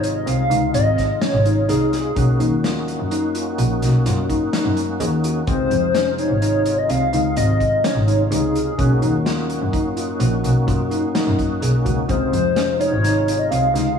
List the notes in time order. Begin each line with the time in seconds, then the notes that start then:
Already playing: G#1 C3 G#3 D#4 F4
0.03 C#5, closed hi-hat
0.15 D#5
0.27 C2 C4 F5, closed hi-hat
0.50 C#2 D#4, closed hi-hat
0.74 G#1 C4 D#5, closed hi-hat
0.98 kick, snare, closed hi-hat
1.21 C#4 C#5, snare, closed hi-hat
1.33 G#1
1.45 D#4, closed hi-hat
1.69 C2 D#4 G#4, snare, closed hi-hat
1.93 snare, closed hi-hat
2.15 B1 A#3 C#4 D#4 F#4, kick, closed hi-hat
2.40 D#2 D#4, closed hi-hat
2.64 F4, snare, closed hi-hat
2.88 closed hi-hat
3.00 F#2
3.11 D#4, closed hi-hat
3.35 F4, closed hi-hat
3.58 A#1 F#4, closed hi-hat
3.82 B1, snare, closed hi-hat
4.06 F#2 F4, snare, closed hi-hat
4.30 D#4, kick, closed hi-hat
4.53 D#4, snare, closed hi-hat
4.65 F#2
4.77 closed hi-hat
5.00 D#2 G#4, closed hi-hat
5.24 F#4, closed hi-hat
5.46 C#2 C3 G#3 C4 D#4 F4 C5, kick, closed hi-hat
5.71 F2, closed hi-hat
5.95 C#4, snare, closed hi-hat
6.18 D#4 C#5, closed hi-hat
6.31 G#1
6.42 D#4, closed hi-hat
6.66 closed hi-hat
6.78 D#5
6.89 C2 C4 F5, closed hi-hat
7.13 C#2 D#4, closed hi-hat
7.36 G#1 C4 D#5, closed hi-hat
7.60 kick, closed hi-hat
7.84 C#4 C#5, snare, closed hi-hat
7.96 G#1
8.08 D#4, closed hi-hat
8.31 C#2 D#4 G#4, closed hi-hat
8.55 closed hi-hat
8.78 B1 A#3 C#4 D#4 F#4, kick, closed hi-hat
9.02 D#2 D#4, closed hi-hat
9.26 F4, snare, closed hi-hat
9.50 closed hi-hat
9.62 F#2
9.73 D#4, kick, closed hi-hat
9.96 F4, closed hi-hat
10.20 A#1 F#4, closed hi-hat
10.44 B1, closed hi-hat
10.68 F#2 F4, kick, closed hi-hat
10.91 D#4, closed hi-hat
11.15 D#4, snare, closed hi-hat
11.27 F#2
11.39 kick, closed hi-hat
11.62 B1 G#4, closed hi-hat
11.85 C#2 F#4, kick, closed hi-hat
12.08 C#2 C3 G#3 C4 D#4 F4 C5, kick, closed hi-hat
12.33 F2, closed hi-hat
12.56 C#4, snare, closed hi-hat
12.80 D#4 C#5, closed hi-hat
12.92 G#1
13.04 D#4, snare, closed hi-hat
13.28 closed hi-hat
13.39 D#5
13.50 C2 C4 F5, closed hi-hat
13.75 C#2 D#4, snare, closed hi-hat